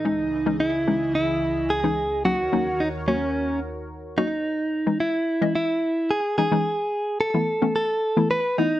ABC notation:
X:1
M:4/4
L:1/16
Q:1/4=109
K:C#m
V:1 name="Clean electric guitar"
D4 E4 E4 G4 | F4 D2 C4 z4 D2- | D4 E4 E4 G2 G2- | G4 A4 A4 B2 D2 |]
V:2 name="Analog synth pad"
[C,,C,E,Gd]16 | [D,,D,F^Ac]16 | z16 | z16 |]
V:3 name="Synth pluck"
[E,G,CD]2 z [E,G,CD]2 z [E,G,CD]4 z3 [E,G,CD]2 z | [F,^A,CD] z [F,A,CD]2 z2 [F,A,CF]4 z4 [F,A,CF] z | z3 [E,G,CD]2 z2 [E,G,Cd]4 z3 [E,G,CD] [E,G,CD] | z4 z [E,A,B,E] z [E,A,B,C]2 z2 [E,A,B,E]2 z [E,A,B,E]2 |]